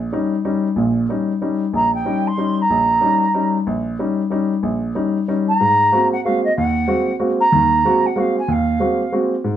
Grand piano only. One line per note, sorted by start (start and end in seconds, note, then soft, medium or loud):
0.12 0.34 G3 soft
0.12 0.34 C#4 soft
0.12 0.35 D#4 medium
0.45 0.67 G3 soft
0.45 0.67 C#4 soft
0.45 0.67 D#4 medium
0.76 1.04 A#1 medium
0.76 1.05 A#2 medium
1.09 1.31 G3 soft
1.09 1.31 C#4 soft
1.09 1.31 D#4 medium
1.41 1.63 G3 soft
1.41 1.63 C#4 soft
1.41 1.63 D#4 medium
1.73 2.01 A#1 medium
2.05 2.27 G3 soft
2.05 2.28 C#4 soft
2.05 2.28 D#4 medium
2.38 2.60 G3 soft
2.38 2.60 C#4 soft
2.38 2.60 D#4 medium
2.70 2.98 A#1 medium
3.01 3.23 G3 soft
3.01 3.24 C#4 soft
3.01 3.24 D#4 medium
3.34 3.56 G3 soft
3.34 3.56 C#4 soft
3.34 3.56 D#4 medium
3.67 3.95 A#1 medium
3.99 4.21 G3 soft
3.99 4.21 C#4 soft
3.99 4.21 D#4 medium
4.30 4.52 G3 soft
4.30 4.53 C#4 soft
4.30 4.53 D#4 medium
4.63 4.91 A#1 medium
4.95 5.17 G3 soft
4.95 5.17 C#4 soft
4.95 5.17 D#4 medium
5.28 5.50 G3 soft
5.28 5.49 C#4 soft
5.28 5.50 D#4 soft
5.61 5.88 G#2 medium
5.92 6.13 G#3 medium
5.92 6.13 A#3 soft
5.92 6.14 C4 soft
5.92 6.14 F#4 medium
6.25 6.46 G#3 medium
6.25 6.46 A#3 soft
6.25 6.46 C4 soft
6.25 6.46 F#4 medium
6.58 6.85 D#2 medium
6.88 7.09 G#3 medium
6.88 7.09 A#3 soft
6.88 7.09 C4 soft
6.88 7.10 F#4 medium
7.20 7.41 G#3 medium
7.20 7.41 A#3 soft
7.20 7.42 C4 soft
7.20 7.41 F#4 medium
7.52 7.80 D#2 medium
7.52 7.80 D#3 medium
7.85 8.06 G#3 medium
7.85 8.06 A#3 soft
7.85 8.06 C4 soft
7.85 8.07 F#4 medium
8.16 8.38 G#3 medium
8.16 8.38 A#3 soft
8.16 8.38 C4 soft
8.16 8.38 F#4 medium
8.48 8.76 D#2 medium
8.80 9.02 G#3 soft
8.80 9.02 A#3 soft
8.80 9.02 C4 soft
8.80 9.02 F#4 medium
9.12 9.34 G#3 medium
9.12 9.34 A#3 soft
9.12 9.34 C4 soft
9.12 9.34 F#4 medium
9.44 9.57 G#2 medium